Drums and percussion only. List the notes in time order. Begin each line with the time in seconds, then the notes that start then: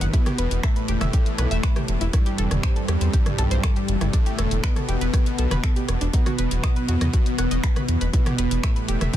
0.01 closed hi-hat
0.13 kick, closed hi-hat
0.26 cross-stick, closed hi-hat, mid tom
0.38 closed hi-hat
0.51 closed hi-hat
0.63 finger snap, kick, cross-stick, closed hi-hat
0.76 closed hi-hat
0.88 closed hi-hat
1.01 cross-stick, closed hi-hat, mid tom
1.13 kick, closed hi-hat
1.26 closed hi-hat
1.38 cross-stick, closed hi-hat
1.51 closed hi-hat
1.63 finger snap, kick, closed hi-hat
1.76 cross-stick, closed hi-hat, mid tom
1.88 closed hi-hat
2.01 closed hi-hat
2.13 kick, cross-stick, closed hi-hat
2.26 closed hi-hat
2.38 closed hi-hat
2.51 cross-stick, closed hi-hat, mid tom
2.63 finger snap, kick, closed hi-hat
2.76 closed hi-hat
2.88 cross-stick, closed hi-hat
3.01 closed hi-hat
3.13 kick, closed hi-hat
3.26 cross-stick, closed hi-hat, mid tom
3.38 closed hi-hat
3.51 closed hi-hat
3.63 finger snap, kick, cross-stick, closed hi-hat
3.76 closed hi-hat
3.88 closed hi-hat
4.01 cross-stick, closed hi-hat, mid tom
4.13 kick, closed hi-hat
4.26 closed hi-hat
4.39 cross-stick, closed hi-hat
4.51 closed hi-hat
4.63 finger snap, kick, closed hi-hat
4.76 cross-stick, closed hi-hat, mid tom
4.89 closed hi-hat
5.01 closed hi-hat
5.13 kick, cross-stick, closed hi-hat
5.26 closed hi-hat
5.39 closed hi-hat
5.51 cross-stick, closed hi-hat, mid tom
5.63 finger snap, kick, closed hi-hat
5.76 closed hi-hat
5.89 cross-stick, closed hi-hat
6.01 closed hi-hat
6.13 kick, closed hi-hat
6.26 cross-stick, closed hi-hat, mid tom
6.39 closed hi-hat
6.51 closed hi-hat
6.64 finger snap, kick, cross-stick, closed hi-hat
6.76 closed hi-hat
6.89 closed hi-hat
7.01 cross-stick, closed hi-hat, mid tom
7.13 kick, closed hi-hat
7.26 closed hi-hat
7.38 cross-stick, closed hi-hat
7.51 closed hi-hat
7.63 finger snap, kick, closed hi-hat
7.76 cross-stick, closed hi-hat, mid tom
7.88 closed hi-hat
8.01 closed hi-hat
8.13 kick, closed hi-hat
8.26 cross-stick, closed hi-hat, mid tom
8.38 closed hi-hat
8.51 closed hi-hat
8.63 finger snap, kick, cross-stick, closed hi-hat
8.76 closed hi-hat
8.88 closed hi-hat
9.01 cross-stick, closed hi-hat, mid tom
9.13 kick, closed hi-hat